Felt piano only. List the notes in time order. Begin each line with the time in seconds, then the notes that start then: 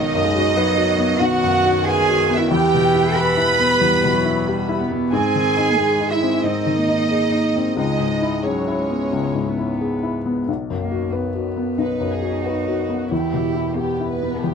Already playing: B1
0.15 F#2
0.36 F#4
0.57 B4
0.78 F#4
0.98 B3
1.21 B1
1.44 F#2
1.66 F#4
1.87 B4
2.09 F#4
2.30 B3
2.51 E2
2.74 B2
2.94 E4
3.16 G4
3.37 E4
3.59 B3
3.81 E2
4.04 B2
4.25 E4
4.48 G4
4.69 E4
4.91 B3
5.12 G#2
5.35 D#3
5.57 D#4
5.78 G#4
6.00 D#4
6.22 C4
6.44 G#2
6.66 D#3
6.88 D#4
7.11 G#4
7.32 D#4
7.56 C4
7.77 C#2
8.00 G#2
8.22 E4
8.43 G#4
8.67 E4
8.89 B3
9.13 C#2
9.35 G#2
9.58 E4
9.81 G#4
10.03 E4
10.26 B3
10.48 B1
10.70 F#2
10.91 F#4
11.13 B4
11.35 F#4
11.56 B3
11.78 B1
12.00 F#2
12.22 F#4
12.46 B4
12.68 F#4
12.89 B3
13.12 E2
13.33 B2
13.55 E4
13.77 G4
14.00 E4
14.22 B3
14.44 E2